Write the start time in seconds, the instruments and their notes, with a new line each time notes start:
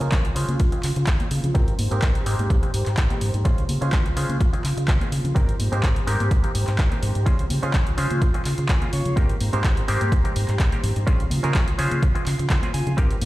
Already playing: string machine F4 C6
0.00 fingered electric bass C#3, clav G#3 C#4 F4 G#4 C5, clean electric guitar C#4 F4 A#4, closed hi-hat, maracas
0.12 fingered electric bass C#2, kick, clap, closed hi-hat
0.25 closed hi-hat
0.35 fingered electric bass C#3, clav G#3 C#4 F4 G#4 C5, clean electric guitar C#4 F4 C5, open hi-hat, maracas
0.48 fingered electric bass C#3, closed hi-hat, high conga, maracas
0.59 fingered electric bass C#2, muted clean electric guitar stroke, kick, closed hi-hat, maracas
0.72 clav G#3 C4 C#4 F4 G#4, muted clean electric guitar stroke, closed hi-hat, maracas
0.83 fingered electric bass C#3, muted clean electric guitar stroke, clap, open hi-hat, maracas
0.96 fingered electric bass C#3, muted clean electric guitar stroke, closed hi-hat, maracas
1.07 fingered electric bass C#2, kick, clap, closed hi-hat
1.20 clav G#3 C4 C#4 F4 G#4, closed hi-hat, high conga
1.31 fingered electric bass C#3, open hi-hat, maracas
1.43 fingered electric bass C#3, closed hi-hat, low conga, maracas
1.54 fingered electric bass G#1, clav G#3 A#3 C4 D#4 G4, clean electric guitar C4 G4 A#4, string machine G4 C5 A#5, kick, closed hi-hat
1.68 closed hi-hat, maracas
1.79 fingered electric bass G#2, open hi-hat, high conga, maracas
1.91 fingered electric bass G#2, clav G#3 A#3 C4 D#4 G4, clean electric guitar C4 G4 A#4, closed hi-hat, maracas
2.02 fingered electric bass G#1, kick, clap, closed hi-hat, maracas
2.15 closed hi-hat
2.26 fingered electric bass G#2, clav G#3 A#3 C4 D#4 G4, clean electric guitar C4 G4 C5, open hi-hat, maracas
2.39 fingered electric bass G#2, closed hi-hat, high conga, maracas
2.50 fingered electric bass G#1, muted clean electric guitar stroke, kick, closed hi-hat, maracas
2.62 clav G#3 A#3 C4 D#4 G4, muted clean electric guitar stroke, closed hi-hat, maracas
2.74 fingered electric bass G#2, muted clean electric guitar stroke, open hi-hat, maracas
2.86 fingered electric bass G#2, muted clean electric guitar stroke, clap, closed hi-hat, maracas
2.97 fingered electric bass G#1, kick, clap, closed hi-hat
3.10 clav G#3 A#3 C4 D#4 G4, closed hi-hat, high conga
3.21 fingered electric bass G#2, open hi-hat, low conga, maracas
3.34 fingered electric bass G#2, closed hi-hat, maracas
3.45 fingered electric bass C#2, clav G#3 C4 C#4 F4 G#4, clean electric guitar C#4 F4 C5, string machine F4 C6, kick, closed hi-hat
3.58 closed hi-hat
3.69 fingered electric bass C#3, open hi-hat, high conga, maracas
3.81 fingered electric bass C#3, clav G#3 C#4 F4 G#4 C5, clean electric guitar C#4 F4 C5, closed hi-hat, maracas
3.92 fingered electric bass C#2, kick, clap, closed hi-hat
4.06 closed hi-hat
4.16 fingered electric bass C#3, clav G#3 C#4 F4 G#4 C5, clean electric guitar C#4 F4 C5, open hi-hat, maracas
4.29 fingered electric bass C#3, closed hi-hat, high conga, maracas
4.40 fingered electric bass C#2, muted clean electric guitar stroke, kick, closed hi-hat, maracas
4.53 clav G#3 C4 C#4 F4 G#4, muted clean electric guitar stroke, closed hi-hat, maracas
4.64 fingered electric bass C#3, muted clean electric guitar stroke, clap, open hi-hat, maracas
4.77 fingered electric bass C#3, muted clean electric guitar stroke, closed hi-hat, maracas
4.88 fingered electric bass C#2, kick, clap, closed hi-hat
5.00 clav G#3 C4 C#4 F4 G#4, closed hi-hat, high conga
5.12 fingered electric bass C#3, open hi-hat, maracas
5.24 fingered electric bass C#3, closed hi-hat, low conga, maracas
5.35 fingered electric bass G#1, clav G#3 A#3 C4 D#4 G4, clean electric guitar C4 G4 A#4, string machine G4 C5 A#5, kick, closed hi-hat
5.49 closed hi-hat, maracas
5.59 fingered electric bass G#2, open hi-hat, high conga, maracas
5.72 fingered electric bass G#2, clav G#3 A#3 C4 D#4 G4, clean electric guitar C4 G4 C5, closed hi-hat, maracas
5.83 fingered electric bass G#1, kick, clap, closed hi-hat
5.96 closed hi-hat
6.07 fingered electric bass G#2, clav G#3 A#3 C4 D#4 G4, clean electric guitar C4 G4 A#4, open hi-hat, maracas
6.20 fingered electric bass G#2, closed hi-hat, high conga, maracas
6.31 fingered electric bass G#1, muted clean electric guitar stroke, kick, closed hi-hat, maracas
6.43 clav G#3 A#3 C4 D#4 G4, muted clean electric guitar stroke, closed hi-hat, maracas
6.55 fingered electric bass G#2, muted clean electric guitar stroke, open hi-hat, maracas
6.67 fingered electric bass G#2, muted clean electric guitar stroke, clap, closed hi-hat, maracas
6.78 fingered electric bass G#1, kick, clap, closed hi-hat
6.91 clav G#3 A#3 C4 D#4 G4, closed hi-hat, high conga
7.02 fingered electric bass G#2, open hi-hat, low conga, maracas
7.15 fingered electric bass G#2, closed hi-hat, maracas
7.26 fingered electric bass C#2, clav G#3 C4 C#4 F4 G#4, clean electric guitar C#4 F4 C5, string machine F4 C6, kick, closed hi-hat
7.39 closed hi-hat, maracas
7.50 fingered electric bass C#3, open hi-hat, high conga, maracas
7.63 fingered electric bass C#3, clav G#3 C#4 F4 G#4 C5, clean electric guitar C#4 F4 C5, closed hi-hat, maracas
7.73 fingered electric bass C#2, kick, clap, closed hi-hat
7.87 closed hi-hat
7.97 fingered electric bass C#3, clav G#3 C#4 F4 G#4 C5, clean electric guitar C#4 F4 C5, open hi-hat, maracas
8.10 fingered electric bass C#3, closed hi-hat, high conga, maracas
8.20 fingered electric bass C#2, muted clean electric guitar stroke, kick, closed hi-hat, maracas
8.34 clav G#3 C4 C#4 F4 G#4, muted clean electric guitar stroke, closed hi-hat, maracas
8.45 fingered electric bass C#3, muted clean electric guitar stroke, clap, open hi-hat, maracas
8.58 fingered electric bass C#3, muted clean electric guitar stroke, closed hi-hat, maracas
8.68 fingered electric bass C#2, clean electric guitar G#5, kick, clap, closed hi-hat, maracas
8.81 clav G#3 C4 C#4 F4 G#4, closed hi-hat, high conga
8.93 fingered electric bass C#3, clean electric guitar C#5, open hi-hat, maracas
9.05 fingered electric bass C#3, closed hi-hat, low conga, maracas
9.16 fingered electric bass G#1, clav G#3 A#3 C4 D#4 G4, clean electric guitar C4 G4 A#4, string machine G4 C5 A#5, kick, closed hi-hat, maracas
9.29 closed hi-hat, maracas
9.41 fingered electric bass G#2, open hi-hat, high conga, maracas
9.53 fingered electric bass G#2, clav G#3 A#3 C4 D#4 G4, clean electric guitar C4 G4 C5, closed hi-hat, maracas
9.64 fingered electric bass G#1, kick, clap, closed hi-hat
9.77 closed hi-hat
9.88 fingered electric bass G#2, clav G#3 A#3 C4 D#4 G4, clean electric guitar C4 G4 C5, open hi-hat, maracas
10.01 fingered electric bass G#2, closed hi-hat, high conga, maracas
10.12 fingered electric bass G#1, muted clean electric guitar stroke, kick, closed hi-hat, maracas
10.24 clav G#3 A#3 C4 D#4 G4, muted clean electric guitar stroke, closed hi-hat, maracas
10.35 fingered electric bass G#2, muted clean electric guitar stroke, open hi-hat, maracas
10.48 fingered electric bass G#2, muted clean electric guitar stroke, clap, closed hi-hat, maracas
10.60 fingered electric bass G#1, kick, clap, closed hi-hat, maracas
10.72 clav G#3 A#3 C4 D#4 G4, closed hi-hat, high conga
10.82 fingered electric bass G#2, open hi-hat, low conga, maracas
10.96 fingered electric bass G#2, closed hi-hat, maracas
11.07 fingered electric bass C#2, clav G#3 C4 C#4 F4 G#4, clean electric guitar C#4 F4 C5, string machine F4 C6, kick, closed hi-hat, maracas
11.20 closed hi-hat, maracas
11.30 fingered electric bass C#3, open hi-hat, high conga, low conga, maracas
11.43 fingered electric bass C#3, clav G#3 C#4 F4 G#4 C5, clean electric guitar C#4 F4 A#4, closed hi-hat, maracas
11.54 fingered electric bass C#2, kick, clap, closed hi-hat, maracas
11.67 closed hi-hat, maracas
11.78 fingered electric bass C#3, clav G#3 C#4 F4 G#4 C5, clean electric guitar C#4 F4 C5, open hi-hat, maracas
11.91 fingered electric bass C#3, closed hi-hat, high conga, maracas
12.02 fingered electric bass C#2, muted clean electric guitar stroke, kick, closed hi-hat, maracas
12.14 clav G#3 C4 C#4 F4 G#4, muted clean electric guitar stroke, closed hi-hat, maracas
12.26 fingered electric bass C#3, muted clean electric guitar stroke, clap, open hi-hat, maracas
12.38 fingered electric bass C#3, muted clean electric guitar stroke, closed hi-hat, maracas
12.50 fingered electric bass C#2, clean electric guitar C5, kick, clap, closed hi-hat
12.62 clav G#3 C4 C#4 F4 G#4, closed hi-hat, high conga
12.74 fingered electric bass C#3, clean electric guitar G#5, open hi-hat, maracas
12.87 fingered electric bass C#3, closed hi-hat, low conga, maracas
12.97 fingered electric bass G#1, clav G#3 A#3 C4 D#4 G4, clean electric guitar C4 G4 A#4, string machine G4 C5 A#5, kick, closed hi-hat, maracas
13.10 closed hi-hat, maracas
13.22 fingered electric bass G#2, open hi-hat, high conga, maracas